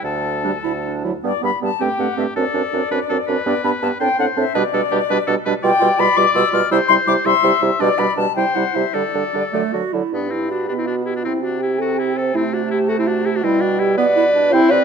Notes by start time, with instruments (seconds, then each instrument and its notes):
0.03 bassoon D2, oboe A4, flute A5
0.44 french horn G3, clarinet D4
0.64 bassoon D2, clarinet E4
0.85 clarinet D4
1.04 french horn F#3, clarinet E4
1.24 bassoon G2, french horn G3, clarinet B3, flute D5
1.42 bassoon G2, french horn G3, clarinet B3, flute B5
1.62 bassoon G2, french horn G3, clarinet B3, flute A5
1.80 bassoon G2, french horn A3, clarinet C4, oboe G4, flute G5
1.99 bassoon G2, french horn A3, clarinet C4, flute F#5
2.17 bassoon G2, french horn A3, clarinet C4, flute E5
2.36 bassoon F#2, french horn C4, clarinet D4, oboe A4, flute D5
2.53 bassoon F#2, french horn C4, clarinet D4
2.73 bassoon F#2, french horn C4, clarinet D4
2.91 bassoon F#2, french horn C4, clarinet D4, oboe B4
3.09 bassoon F#2, french horn C4, clarinet D4, oboe A4
3.27 bassoon F#2, french horn C4, clarinet D4, oboe B4
3.46 bassoon G2, french horn B3, clarinet D4, flute D5
3.64 bassoon G2, french horn B3, clarinet D4, flute B5
3.82 bassoon G2, french horn B3, clarinet D4, flute A5
4.00 bassoon A2, french horn C4, clarinet D4, oboe C5, flute G5
4.18 bassoon A2, french horn C4, clarinet D4, flute F#5
4.37 bassoon A2, french horn C4, clarinet D4, flute E5
4.55 bassoon B2, french horn G3, clarinet D4, oboe B4, flute D5
4.73 bassoon B2, french horn G3, clarinet D4, oboe A4
4.91 bassoon B2, french horn G3, clarinet D4, oboe G4
5.10 bassoon B2, french horn G3, clarinet D4, oboe B4
5.27 bassoon B2, french horn G3, clarinet D4, oboe A4
5.45 bassoon B2, french horn G3, clarinet D4, oboe B4
5.63 bassoon B2, french horn G3, clarinet F4, oboe D5, flute G5
5.80 bassoon B2, french horn G3, clarinet F4
5.99 bassoon B2, french horn G3, clarinet F4, flute B5
6.16 bassoon B2, french horn G3, clarinet F4, flute D6
6.34 bassoon B2, french horn G3, clarinet F4, flute E6
6.52 bassoon B2, french horn G3, clarinet F4, flute F6
6.71 bassoon C3, french horn G3, clarinet E4, oboe C5, flute E6
6.88 bassoon C3, french horn G3, clarinet E4, flute C6
7.07 bassoon C3, french horn G3, clarinet E4, flute D6
7.25 bassoon C3, french horn G3, clarinet E4, oboe E5, flute C6
7.43 bassoon C3, french horn G3, clarinet E4
7.62 bassoon C3, french horn G3, clarinet E4
7.79 bassoon B2, french horn G3, clarinet D4, flute D5, oboe D5
7.98 bassoon B2, french horn G3, clarinet D4, flute B5
8.16 bassoon B2, french horn G3, clarinet D4, flute A5
8.36 bassoon C3, french horn G3, clarinet E4, oboe C5, flute G5
8.54 bassoon C3, french horn G3, clarinet E4, flute F#5
8.74 bassoon C3, french horn G3, clarinet E4, flute E5
8.93 bassoon D3, french horn G3, clarinet D4, oboe A4, flute D5
9.14 bassoon D3, french horn G3, clarinet D4
9.34 bassoon D3, french horn G3, clarinet D4
9.53 bassoon D3, french horn F#3, clarinet A3
9.73 bassoon D3, french horn F#3, clarinet F#4
9.93 bassoon D3, french horn F#3, clarinet E4
10.12 bassoon G2, oboe B3, french horn D4, flute B5
10.31 oboe C4, french horn E4
10.51 oboe D4, french horn F#4
10.68 bassoon B2, clarinet B3, oboe D4, french horn G4
10.78 oboe C4, french horn E4
10.86 oboe D4, french horn F#4
11.06 oboe E4, french horn G4
11.15 oboe D4, french horn F#4
11.24 bassoon C3, oboe C4, clarinet C4, french horn E4, flute G5
11.43 oboe D4, french horn F#4
11.60 oboe E4, french horn G4
11.79 clarinet C4, oboe F#4, french horn A4
11.99 oboe E4, french horn G4
12.17 oboe A4, french horn C5
12.34 bassoon C3, clarinet A3, oboe C4, french horn E4, flute A5
12.53 oboe D4, french horn F#4
12.71 oboe E4, french horn G4
12.89 oboe F#4, french horn A4
12.99 oboe C4, french horn E4
13.07 oboe D4, french horn F#4
13.25 oboe E4, french horn G4
13.36 oboe D4, french horn F#4
13.43 bassoon B2, clarinet G3, oboe C4, french horn E4, flute G5
13.60 oboe D4, french horn F#4
13.79 oboe E4, french horn G4
13.98 clarinet B3, oboe B4, french horn D5, flute F#5
14.16 clarinet E4
14.35 clarinet D4
14.53 bassoon C3, clarinet C4, french horn E4, oboe C5, flute G5
14.71 bassoon C3, oboe B4, flute C5, french horn D5